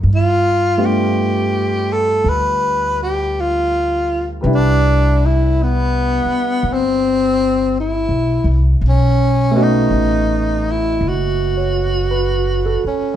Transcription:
0.03 2.20 G2 medium
0.15 0.87 F4 medium
0.77 4.39 G3 soft
0.77 4.44 A3 soft
0.77 4.45 B3 soft
0.77 4.44 D4 soft
0.77 4.44 F4 soft
0.86 1.94 G4 medium
1.93 2.30 A4 medium
2.24 4.40 D2 medium
2.29 2.99 B4 medium
3.03 3.42 G4 medium
3.41 4.28 F4 medium
4.41 6.21 C2 medium
4.41 8.81 G3 soft
4.41 8.82 B4 soft
4.45 8.83 D4 soft
4.45 8.84 E4 soft
4.54 5.27 D4 medium
5.26 5.64 E4 medium
5.63 6.75 B3 medium
6.25 muted upright bass stroke soft
6.63 8.05 G1 medium
6.73 7.78 C4 medium
7.80 8.63 E4 medium
8.09 8.43 B1 soft
8.44 8.79 C2 medium
8.81 9.88 B1 medium
8.88 9.64 C#4 medium
9.51 13.16 A3 soft
9.51 13.15 B3 soft
9.51 13.16 C#4 soft
9.55 13.16 F#4 medium
9.55 13.16 D#5 soft
9.63 10.73 D#4 medium
9.90 10.97 A1 medium
10.71 11.10 E4 medium
11.01 12.79 F#1 medium
11.09 12.86 F#4 medium
11.57 12.35 C#5 soft
12.11 12.98 B4 soft
12.66 13.16 A4 soft
12.84 13.16 C#4 medium
12.84 muted upright bass stroke soft

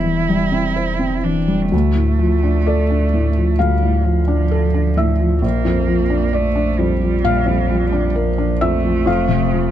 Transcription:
0.00 1.75 E1 medium
0.00 1.69 E2 soft
0.00 0.04 E3 soft
0.00 0.42 E3 soft
0.00 0.29 G3 soft
0.00 0.52 C4 soft
0.00 1.25 E4 soft
0.00 0.76 C5 soft
0.00 0.72 E5 soft
0.29 0.67 G3 soft
0.52 0.90 C4 soft
0.76 1.15 C5 soft
0.99 1.39 C4 soft
1.24 1.63 E3 soft
1.24 1.72 D4 soft
1.48 1.72 G3 soft
1.72 3.56 D2 soft
1.72 5.44 D2 medium
1.72 3.61 A3 soft
1.95 2.34 A2 soft
2.19 2.58 F3 soft
2.43 2.81 D4 soft
2.66 3.05 A4 soft
2.66 3.56 D5 medium
2.90 3.28 D4 soft
3.14 3.51 A2 soft
3.37 3.74 F3 soft
3.59 5.39 D2 soft
3.59 4.07 G3 soft
3.59 4.93 F5 medium
3.83 4.19 A2 soft
4.05 4.42 F3 soft
4.05 5.41 F3 soft
4.28 4.65 D4 soft
4.51 4.88 A4 soft
4.74 5.11 D4 soft
4.97 5.33 A2 soft
4.97 5.40 E5 medium
5.19 5.43 F3 soft
5.42 7.20 A#1 soft
5.42 9.08 A#1 medium
5.42 6.36 A#3 soft
5.65 6.02 F2 soft
5.88 6.25 F3 soft
6.10 6.47 D4 soft
6.33 6.81 A3 medium
6.33 6.70 D5 soft
6.55 6.92 D4 soft
6.78 7.15 F2 soft
6.78 8.18 G3 medium
7.01 7.38 F3 soft
7.24 9.03 A#1 soft
7.24 8.58 F5 medium
7.46 7.83 F2 soft
7.69 8.06 F3 soft
7.92 8.29 D4 soft
8.16 8.64 F3 medium
8.16 8.52 A#4 soft
8.38 8.75 D4 soft
8.61 8.98 F2 soft
8.61 9.71 A3 medium
8.61 9.04 E5 medium
8.83 9.07 F3 soft
9.06 9.71 F1 medium
9.06 9.71 F2 medium
9.06 9.71 F5 medium
9.28 9.66 C3 soft
9.52 9.71 F3 soft

